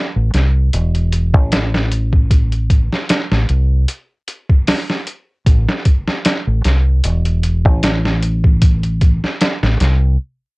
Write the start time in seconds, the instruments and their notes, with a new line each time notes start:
0.16 fingered electric bass A1
0.33 fingered electric bass C2, snare, closed hi-hat
0.73 fingered electric bass E1, closed hi-hat
0.95 closed hi-hat
1.12 closed hi-hat
1.34 fingered electric bass A1, kick
1.52 snare, closed hi-hat
1.74 snare
1.91 closed hi-hat
2.13 kick
2.31 kick, closed hi-hat
2.52 closed hi-hat
2.70 kick, closed hi-hat
2.93 snare
3.09 snare, closed hi-hat
3.32 fingered electric bass A1, snare
3.49 fingered electric bass C2, closed hi-hat
3.88 closed hi-hat
4.28 closed hi-hat
4.49 kick
4.67 snare, open hi-hat
4.90 snare
5.07 closed hi-hat
5.46 fingered electric bass A1, kick, closed hi-hat
5.69 snare
5.85 kick, closed hi-hat
6.08 snare
6.25 snare, closed hi-hat
6.47 fingered electric bass A1
6.65 fingered electric bass C2, snare, closed hi-hat
7.04 fingered electric bass E1, closed hi-hat
7.25 closed hi-hat
7.43 closed hi-hat
7.65 fingered electric bass A1, kick
7.83 snare, closed hi-hat
8.05 snare
8.23 closed hi-hat
8.44 kick
8.62 kick, closed hi-hat
8.83 closed hi-hat
9.01 kick, closed hi-hat
9.24 snare
9.41 snare, closed hi-hat
9.63 fingered electric bass A1, snare
9.80 fingered electric bass C2, snare, closed hi-hat